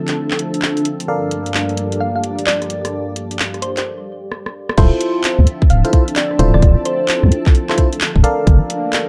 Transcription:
0.00 1.05 D3 medium
0.00 3.81 F3 medium
0.00 1.05 C4 medium
0.00 1.92 D4 medium
0.00 1.06 E4 medium
0.00 1.06 F4 medium
0.00 1.06 A4 medium
0.00 1.08 A4 medium
0.00 1.06 C5 medium
0.00 1.05 E5 medium
0.00 3.81 A5 medium
0.08 clap medium
0.08 closed hi-hat medium
0.31 clap medium
0.39 closed hi-hat loud
0.54 closed hi-hat medium
0.62 clap loud
0.77 closed hi-hat soft
0.85 closed hi-hat loud
1.00 closed hi-hat medium
1.08 3.83 G2 medium
1.08 3.83 A#3 medium
1.08 3.83 D4 medium
1.08 3.85 G4 medium
1.08 4.76 A4 medium
1.08 4.76 A#4 medium
1.08 4.76 D5 medium
1.08 4.76 F5 medium
1.16 3.86 D5 medium
1.31 closed hi-hat medium
1.46 closed hi-hat medium
1.54 clap loud
1.69 closed hi-hat soft
1.77 closed hi-hat loud
1.92 closed hi-hat medium
2.00 2.10 F5 medium
2.16 2.21 F5 medium
2.24 closed hi-hat loud
2.39 closed hi-hat medium
2.47 2.82 D5 medium
2.47 clap loud
2.62 cross-stick soft
2.62 closed hi-hat soft
2.70 closed hi-hat medium
2.85 cross-stick medium
2.85 closed hi-hat medium
3.16 closed hi-hat medium
3.31 closed hi-hat medium
3.39 clap loud
3.54 cross-stick soft
3.54 closed hi-hat soft
3.62 3.72 C5 medium
3.62 closed hi-hat loud
3.77 3.83 C5 medium
3.77 clap medium
3.77 closed hi-hat medium
4.32 cross-stick medium
4.46 cross-stick medium
4.69 cross-stick medium
4.78 4.90 D1 loud
4.78 9.09 F3 medium
4.78 8.43 C4 medium
4.78 9.09 D4 medium
4.78 5.47 E4 loud
4.78 5.47 F4 medium
4.78 5.47 A4 medium
4.78 5.47 C5 loud
4.78 8.43 E5 medium
4.78 9.09 A5 medium
4.78 kick loud
4.78 closed hi-hat medium
4.78 crash loud
5.01 8.47 A4 medium
5.01 closed hi-hat loud
5.24 clap loud
5.24 closed hi-hat medium
5.39 5.46 D2 loud
5.47 closed hi-hat loud
5.62 kick loud
5.70 5.83 D1 medium
5.70 5.79 F5 medium
5.70 closed hi-hat medium
5.84 5.92 E4 medium
5.84 5.92 F4 medium
5.84 5.92 A4 medium
5.84 5.92 C5 medium
5.84 5.90 F5 medium
5.84 closed hi-hat medium
5.93 6.04 E4 medium
5.93 6.04 F4 medium
5.93 6.04 A4 medium
5.93 6.04 C5 medium
5.93 kick medium
5.93 closed hi-hat loud
6.08 closed hi-hat medium
6.16 6.51 D5 medium
6.16 clap loud
6.16 closed hi-hat medium
6.31 cross-stick soft
6.39 6.52 D1 loud
6.39 7.66 E4 medium
6.39 7.66 F4 medium
6.39 7.66 A4 medium
6.39 7.66 C5 loud
6.39 closed hi-hat loud
6.54 6.61 D1 loud
6.54 6.68 D5 medium
6.54 cross-stick medium
6.62 6.75 D1 loud
6.62 kick loud
6.62 closed hi-hat medium
6.85 7.32 C5 medium
6.85 closed hi-hat loud
7.08 clap loud
7.08 closed hi-hat medium
7.23 7.30 D2 loud
7.23 cross-stick soft
7.32 closed hi-hat loud
7.46 kick loud
7.46 clap medium
7.55 closed hi-hat medium
7.69 7.76 E4 medium
7.69 7.76 F4 medium
7.69 7.76 A4 medium
7.69 7.76 C5 medium
7.69 clap medium
7.77 7.88 E4 medium
7.77 7.88 F4 medium
7.77 7.88 A4 medium
7.77 7.88 C5 medium
7.77 kick medium
7.77 closed hi-hat loud
7.93 closed hi-hat medium
8.01 clap loud
8.01 closed hi-hat medium
8.16 8.23 D1 loud
8.16 kick medium
8.24 9.09 A4 medium
8.24 9.09 A#4 medium
8.24 9.09 D5 medium
8.24 9.09 F5 loud
8.24 closed hi-hat loud
8.47 8.59 G1 loud
8.47 9.09 A#3 medium
8.47 9.09 D4 medium
8.47 9.09 G4 medium
8.47 kick loud
8.47 closed hi-hat medium
8.65 9.09 D5 medium
8.70 closed hi-hat loud
8.93 clap loud
8.93 closed hi-hat medium

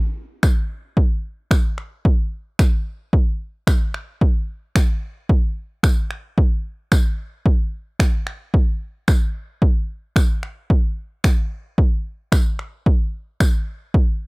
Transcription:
0.43 finger snap loud
0.43 kick loud
0.43 tambourine medium
0.97 kick loud
1.51 finger snap loud
1.51 kick loud
1.51 tambourine medium
1.78 finger snap medium
2.05 kick loud
2.59 finger snap loud
2.59 kick loud
2.59 tambourine medium
3.13 kick loud
3.67 finger snap loud
3.67 kick loud
3.67 tambourine medium
3.94 finger snap medium
4.21 kick loud
4.75 finger snap loud
4.75 kick loud
4.75 tambourine medium
5.29 kick loud
5.83 finger snap loud
5.83 kick loud
5.83 tambourine medium
6.11 finger snap medium
6.38 kick loud
6.92 finger snap loud
6.92 kick loud
6.92 tambourine medium
7.46 kick loud
8.00 finger snap loud
8.00 kick loud
8.00 tambourine medium
8.27 finger snap medium
8.54 kick loud
9.08 finger snap loud
9.08 kick loud
9.08 tambourine medium
9.62 kick loud
10.16 finger snap loud
10.16 kick loud
10.16 tambourine medium
10.43 finger snap medium
10.70 kick loud
11.24 finger snap loud
11.24 kick loud
11.24 tambourine medium
11.78 kick loud
12.32 finger snap loud
12.32 kick loud
12.32 tambourine medium
12.59 finger snap medium
12.86 kick loud
13.40 finger snap loud
13.40 kick loud
13.40 tambourine medium
13.94 kick loud

